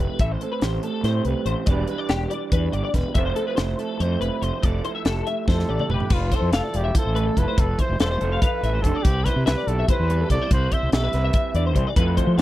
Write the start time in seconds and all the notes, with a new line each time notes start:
Already playing: F3 A3 E4 G4 A4
0.00 C3 B4
0.19 A1 A2 A4 E5, kick, closed hi-hat
0.31 C5
0.41 C4 A4, closed hi-hat
0.52 B4
0.62 A1 G4 C5, snare, closed hi-hat
0.83 A3 A4, closed hi-hat
1.03 A2 C4 C5, snare, closed hi-hat
1.25 C2 G4 B4, closed hi-hat
1.45 A1 E3 C5, closed hi-hat
1.66 E1 E3 G3 D4 D5, kick, closed hi-hat
1.70 G4 B4
1.88 D4 B4, closed hi-hat
1.98 D5
2.09 E1 G4, snare, closed hi-hat
2.30 G3 D5, closed hi-hat
2.52 E2 D4 B4, kick, closed hi-hat
2.73 G1 G4 D5, closed hi-hat
2.84 D5
2.94 E1 B2 B4, kick, snare, closed hi-hat
3.14 F1 F3 A3 C4 E4 C5 E5, kick, closed hi-hat
3.25 C5
3.35 C4 A4, closed hi-hat
3.47 B4
3.56 F1 E4 C5, snare, closed hi-hat
3.78 A3 A4, closed hi-hat
4.00 F2 C4 C5, closed hi-hat
4.20 F1 E4 B4, closed hi-hat
4.42 F1 F3 C5, closed hi-hat
4.63 F1 F3 A4 D5, kick, closed hi-hat
4.85 E4 C5, closed hi-hat
4.95 E5
5.05 F1 G4 A4, snare, closed hi-hat
5.27 A3 E5, closed hi-hat
5.48 F2 E4 A4 C5, kick, snare
5.59 snare
5.69 A1 G4 D5
5.79 D5, mid tom
5.89 F1 C3 B4, mid tom
5.93 G4
6.00 floor tom
6.10 F1 F3 F4 B4, kick, crash
6.32 E4 A4 C5, kick, closed hi-hat
6.42 F2
6.52 F1 F4 A4 F5, snare, closed hi-hat
6.63 D5
6.73 E1 F4 G4, closed hi-hat
6.84 E5
6.95 E4 A4 C5, kick, closed hi-hat
7.05 A1
7.14 A3 B4, closed hi-hat
7.26 A4
7.37 F1 E4 B4, kick, closed hi-hat
7.48 C5
7.57 F1 F3 A4 B4, kick, closed hi-hat
7.79 E4 C5, kick, closed hi-hat
7.89 F1
8.00 E1 F4 A4 C5, snare, closed hi-hat
8.11 C5
8.21 F1 A4, closed hi-hat
8.32 F5
8.41 F3 B4 F5, kick, closed hi-hat
8.63 A1 E3 E5, closed hi-hat
8.74 C5
8.82 F1 D3 A4, kick, closed hi-hat
8.95 D5
9.03 C2 C3 G4 B4, kick, closed hi-hat
9.25 E4 B4 C5, kick, closed hi-hat
9.36 C3
9.46 C2 G4 B4 E5, snare, closed hi-hat
9.57 D5
9.67 B1 G4 A4, closed hi-hat
9.79 E5
9.88 E4 B4 C5, kick, closed hi-hat
10.00 E2
10.10 G3 B4, closed hi-hat
10.20 A4
10.30 C2 E4 D5, kick, closed hi-hat
10.42 C5
10.51 C2 C3 B4 C5, kick, closed hi-hat
10.72 E4 C5 E5, kick, closed hi-hat
10.83 C2
10.92 B1 G4 A4 E5, snare, closed hi-hat
11.04 B4
11.13 C2 B4, snare, closed hi-hat
11.25 E5
11.33 C3 E5, kick, closed hi-hat
11.54 E2 D3 D5, closed hi-hat
11.66 C5
11.76 C2 E3, kick, closed hi-hat
11.87 D5
11.96 F2 F3 A3 E4 F4 A4 B4, kick, closed hi-hat
12.17 E4 C5, kick, closed hi-hat
12.27 F3
12.38 F2 C5 F5